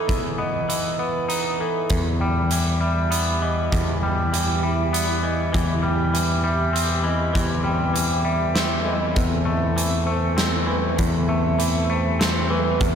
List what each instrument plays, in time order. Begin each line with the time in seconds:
Already playing: clean electric guitar E3 B3 D#4
0.08 clean electric guitar E2, kick, closed hi-hat
0.38 clean electric guitar B3, vibraphone D#5
0.69 clean electric guitar E3, closed hi-hat
0.98 clean electric guitar B3, vibraphone B4
1.29 clean electric guitar D#4, closed hi-hat
1.58 clean electric guitar E3, vibraphone A4
1.89 clean electric guitar E2, picked electric bass E2, ambient pad G3 E4 G4, kick, closed hi-hat
2.19 clean electric guitar G3, vibraphone G5
2.51 clean electric guitar E3, closed hi-hat
2.81 clean electric guitar G3, vibraphone E5
3.11 clean electric guitar B3, closed hi-hat
3.42 clean electric guitar E3, vibraphone D#5
3.72 clean electric guitar E2, picked electric bass E2, kick, closed hi-hat
4.02 clean electric guitar G3, vibraphone G5
4.33 clean electric guitar E3, closed hi-hat
4.63 clean electric guitar G3, vibraphone E5
4.93 clean electric guitar B3, closed hi-hat
5.23 clean electric guitar E3, vibraphone D#5
5.52 picked electric bass E2, clean electric guitar E3, ambient pad E3 C4 G4, kick, closed hi-hat
5.83 clean electric guitar G3, vibraphone G5
6.13 clean electric guitar E3, closed hi-hat
6.44 clean electric guitar G3, vibraphone E5
6.73 clean electric guitar C4, closed hi-hat
7.03 clean electric guitar E3, vibraphone D#5
7.33 picked electric bass E2, clean electric guitar E3, ambient pad A4, kick, closed hi-hat
7.64 clean electric guitar G3, vibraphone G5
7.94 clean electric guitar E3, closed hi-hat
8.24 clean electric guitar G3, vibraphone E5
8.55 clean electric guitar C4, snare, closed hi-hat
8.85 clean electric guitar E3, vibraphone D#5
9.15 clean electric guitar E2, picked electric bass E2, ambient pad A3, kick, closed hi-hat
9.45 clean electric guitar A3, vibraphone E5
9.76 clean electric guitar E3, closed hi-hat
10.06 clean electric guitar A3, vibraphone C5
10.37 clean electric guitar C4, snare, closed hi-hat
10.67 clean electric guitar E3, vibraphone B4
10.97 clean electric guitar E2, picked electric bass E2, ambient pad G4, kick, closed hi-hat
11.28 clean electric guitar A3, vibraphone E5
11.59 clean electric guitar E3, closed hi-hat
11.89 clean electric guitar A3, vibraphone C5
12.20 clean electric guitar C4, snare, closed hi-hat
12.50 clean electric guitar E3, vibraphone B4
12.80 clean electric guitar E2, picked electric bass E2, ambient pad E3 D#5, kick, closed hi-hat